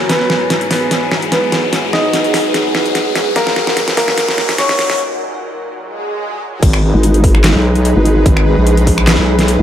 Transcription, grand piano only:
0.09 B3 B4
0.71 B3 B4
1.32 B3 B4
1.93 D#4 D#5
3.36 A#3 A#4
3.97 A#3 A#4
4.58 C#4 C#5

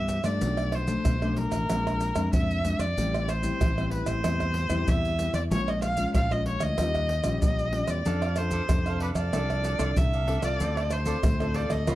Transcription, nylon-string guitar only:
Already playing: G2 E3 B3 D4
0.23 F3 A3 D4
0.41 B2
0.88 F3 A3 D4
1.06 B2
1.21 F3 A3 D4
1.70 A#2 G#3 C4 D4
2.15 G#3 C4 D4
2.33 F3
2.64 G#3 C4 D4
2.97 A2 G3 C4 E4
3.43 G3 C4 E4
3.61 E3
3.78 G3 C4 E4
4.25 A2 G3 C4 E4
4.70 G3 C4 E4
4.89 E3
5.19 G3 C4 E4
5.52 A#2 G#3 C#4 F4
5.97 G#3 C#4 F4
6.16 F3
6.32 G#3 C#4 F4
6.79 D#3 G3 C#4 F4
7.24 G3 C#4 F4
7.42 A#2
7.72 G3 C#4 F4
8.05 F3 C4 D4 A4
8.38 C4 D4 A4
8.68 C3 C4 D4 A4
9.32 F3 C4 D4 A4
9.79 C4 D4 A4
9.96 C3
10.27 C4 D4 A4
10.42 C4 F4 A4
10.60 D3
11.06 C4 F4 A4
11.23 A2
11.40 C4 F4 A4
11.86 C#3 B3 F4 A#4

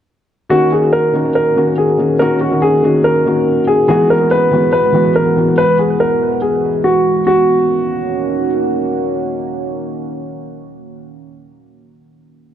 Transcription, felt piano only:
0.49 D#3 A#3 C#4 F#4
1.13 D#3 A#3 C#4 F#4
1.55 D#3 A#3 C#4 F#4
1.98 D#3 A#3 C#4 F#4
2.19 D#3 A#3 C#4 F#4
2.50 D#3 A#3 C#4 F#4
2.82 D#3 A#3 C#4 F#4
3.25 D#3 A#3 C#4 F#4
3.88 E3 G#3 B3 F#4
4.51 E3 G#3 B3 F#4
4.92 E3 G#3 B3 F#4
5.36 E3 G#3 B3 F#4

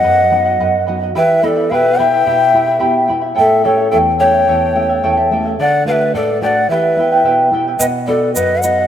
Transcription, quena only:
Already playing: F#5
1.17 E5
1.44 D5 D#5
1.70 F5
1.75 E5
1.98 G5
3.39 E5
3.65 C#5
3.91 E5
4.20 G5
5.60 F#5
5.87 F5
5.91 E5
6.15 D5
6.42 G5
6.47 F#5
6.70 E5
7.79 D#5
8.07 D5
8.33 D#5
8.60 F#5

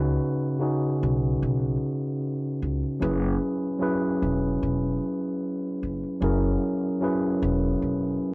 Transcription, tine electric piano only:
Already playing: C#3 C#4 D#4 F#4 B4
0.59 C#3 C#4 D#4 F#4 G#4
3.00 F#3 C#4 E4 G#4 B4
3.79 F#3 C#4 E4 G#4 B4
6.21 F#3 C#4 E4 G#4 A#4
7.01 F#3 C#4 E4 G#4 B4

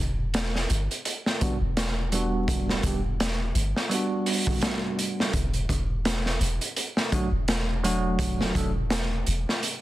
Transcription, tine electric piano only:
1.41 G3 B3 D4 F#4
2.12 G3 B3 D4 F#4
2.85 G3 B3 D4 G4
3.90 G3 B3 D4
3.94 F#4
7.12 F#3 A3 D4 F#4
7.83 F#3 A3 D4 F#4
8.55 F#3 A3 D4 A4

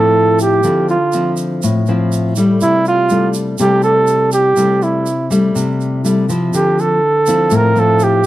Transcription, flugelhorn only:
Already playing: A4
0.42 G4
0.90 F4
2.62 E4
2.88 F4
3.60 G4
3.84 A4
4.33 G4
4.83 E4
6.55 G4
6.80 A4
7.56 A#4
7.80 A4
8.04 G4

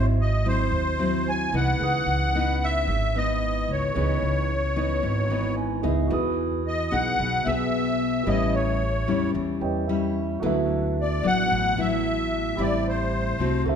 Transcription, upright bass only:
Already playing: G#1
0.72 D#2
1.53 C2
1.79 C#2
2.06 C#2
2.87 G#1
3.68 C#2
3.96 C#2
4.23 C#2
5.03 G#1
5.84 C#2
6.10 E2
6.92 B1
7.19 B1
7.46 B1
8.27 A1
9.08 E2
9.34 E2
9.61 E2
10.43 D2
11.24 A1
11.51 A1
11.77 A1
12.58 A1
13.38 C2
13.65 D2

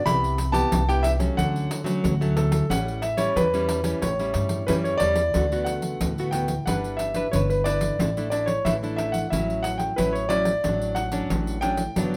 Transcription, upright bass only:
0.06 C2
0.72 C2
1.38 D2
2.04 D2
2.70 A1
3.36 E2
4.02 A1
4.35 G2
4.69 F#2
5.01 E2
5.35 D2
6.01 D2
6.67 G1
7.33 G1
7.99 A1
8.65 A1
9.32 A1
9.98 A1
10.64 A1
11.30 A1
11.96 G1

